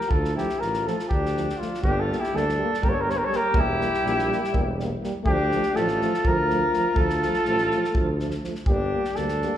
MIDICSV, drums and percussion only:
0, 0, Header, 1, 2, 480
1, 0, Start_track
1, 0, Key_signature, -1, "minor"
1, 0, Tempo, 488998
1, 108, Time_signature, 7, 3, 24, 8
1, 9398, End_track
2, 0, Start_track
2, 0, Title_t, "Drums"
2, 9, Note_on_c, 9, 38, 25
2, 104, Note_on_c, 9, 36, 83
2, 108, Note_off_c, 9, 38, 0
2, 203, Note_off_c, 9, 36, 0
2, 242, Note_on_c, 9, 38, 25
2, 340, Note_off_c, 9, 38, 0
2, 373, Note_on_c, 9, 38, 24
2, 471, Note_off_c, 9, 38, 0
2, 485, Note_on_c, 9, 38, 24
2, 583, Note_off_c, 9, 38, 0
2, 606, Note_on_c, 9, 38, 26
2, 704, Note_off_c, 9, 38, 0
2, 723, Note_on_c, 9, 38, 26
2, 821, Note_off_c, 9, 38, 0
2, 858, Note_on_c, 9, 38, 26
2, 957, Note_off_c, 9, 38, 0
2, 975, Note_on_c, 9, 38, 30
2, 1073, Note_off_c, 9, 38, 0
2, 1086, Note_on_c, 9, 36, 76
2, 1184, Note_off_c, 9, 36, 0
2, 1233, Note_on_c, 9, 38, 27
2, 1331, Note_off_c, 9, 38, 0
2, 1344, Note_on_c, 9, 38, 23
2, 1442, Note_off_c, 9, 38, 0
2, 1467, Note_on_c, 9, 38, 27
2, 1565, Note_off_c, 9, 38, 0
2, 1589, Note_on_c, 9, 38, 26
2, 1687, Note_off_c, 9, 38, 0
2, 1712, Note_on_c, 9, 38, 25
2, 1801, Note_on_c, 9, 36, 78
2, 1810, Note_off_c, 9, 38, 0
2, 1899, Note_off_c, 9, 36, 0
2, 2085, Note_on_c, 9, 38, 22
2, 2183, Note_off_c, 9, 38, 0
2, 2194, Note_on_c, 9, 38, 22
2, 2293, Note_off_c, 9, 38, 0
2, 2322, Note_on_c, 9, 38, 23
2, 2421, Note_off_c, 9, 38, 0
2, 2444, Note_on_c, 9, 38, 24
2, 2542, Note_off_c, 9, 38, 0
2, 2690, Note_on_c, 9, 38, 29
2, 2781, Note_on_c, 9, 36, 80
2, 2788, Note_off_c, 9, 38, 0
2, 2879, Note_off_c, 9, 36, 0
2, 3041, Note_on_c, 9, 38, 22
2, 3139, Note_off_c, 9, 38, 0
2, 3265, Note_on_c, 9, 38, 31
2, 3364, Note_off_c, 9, 38, 0
2, 3477, Note_on_c, 9, 36, 98
2, 3575, Note_off_c, 9, 36, 0
2, 3739, Note_on_c, 9, 38, 25
2, 3837, Note_off_c, 9, 38, 0
2, 3866, Note_on_c, 9, 38, 26
2, 3964, Note_off_c, 9, 38, 0
2, 3989, Note_on_c, 9, 38, 25
2, 4087, Note_off_c, 9, 38, 0
2, 4110, Note_on_c, 9, 38, 28
2, 4208, Note_off_c, 9, 38, 0
2, 4244, Note_on_c, 9, 38, 22
2, 4342, Note_off_c, 9, 38, 0
2, 4359, Note_on_c, 9, 38, 27
2, 4457, Note_off_c, 9, 38, 0
2, 4460, Note_on_c, 9, 36, 78
2, 4558, Note_off_c, 9, 36, 0
2, 4709, Note_on_c, 9, 38, 23
2, 4807, Note_off_c, 9, 38, 0
2, 4946, Note_on_c, 9, 38, 27
2, 5044, Note_off_c, 9, 38, 0
2, 5159, Note_on_c, 9, 36, 85
2, 5258, Note_off_c, 9, 36, 0
2, 5413, Note_on_c, 9, 38, 23
2, 5511, Note_off_c, 9, 38, 0
2, 5525, Note_on_c, 9, 38, 25
2, 5623, Note_off_c, 9, 38, 0
2, 5653, Note_on_c, 9, 38, 25
2, 5751, Note_off_c, 9, 38, 0
2, 5768, Note_on_c, 9, 38, 25
2, 5866, Note_off_c, 9, 38, 0
2, 5904, Note_on_c, 9, 38, 23
2, 6003, Note_off_c, 9, 38, 0
2, 6027, Note_on_c, 9, 38, 27
2, 6125, Note_off_c, 9, 38, 0
2, 6131, Note_on_c, 9, 36, 84
2, 6230, Note_off_c, 9, 36, 0
2, 6381, Note_on_c, 9, 38, 21
2, 6480, Note_off_c, 9, 38, 0
2, 6611, Note_on_c, 9, 38, 26
2, 6709, Note_off_c, 9, 38, 0
2, 6833, Note_on_c, 9, 36, 88
2, 6931, Note_off_c, 9, 36, 0
2, 6965, Note_on_c, 9, 38, 24
2, 7063, Note_off_c, 9, 38, 0
2, 7092, Note_on_c, 9, 38, 29
2, 7190, Note_off_c, 9, 38, 0
2, 7203, Note_on_c, 9, 38, 24
2, 7301, Note_off_c, 9, 38, 0
2, 7314, Note_on_c, 9, 38, 24
2, 7412, Note_off_c, 9, 38, 0
2, 7440, Note_on_c, 9, 38, 26
2, 7538, Note_off_c, 9, 38, 0
2, 7568, Note_on_c, 9, 38, 23
2, 7667, Note_off_c, 9, 38, 0
2, 7699, Note_on_c, 9, 38, 29
2, 7797, Note_off_c, 9, 38, 0
2, 7801, Note_on_c, 9, 36, 83
2, 7900, Note_off_c, 9, 36, 0
2, 8046, Note_on_c, 9, 38, 23
2, 8144, Note_off_c, 9, 38, 0
2, 8153, Note_on_c, 9, 38, 28
2, 8252, Note_off_c, 9, 38, 0
2, 8286, Note_on_c, 9, 38, 28
2, 8385, Note_off_c, 9, 38, 0
2, 8393, Note_on_c, 9, 38, 23
2, 8491, Note_off_c, 9, 38, 0
2, 8502, Note_on_c, 9, 36, 94
2, 8600, Note_off_c, 9, 36, 0
2, 8880, Note_on_c, 9, 38, 27
2, 8978, Note_off_c, 9, 38, 0
2, 8989, Note_on_c, 9, 38, 30
2, 9087, Note_off_c, 9, 38, 0
2, 9113, Note_on_c, 9, 38, 28
2, 9211, Note_off_c, 9, 38, 0
2, 9245, Note_on_c, 9, 38, 22
2, 9343, Note_off_c, 9, 38, 0
2, 9398, End_track
0, 0, End_of_file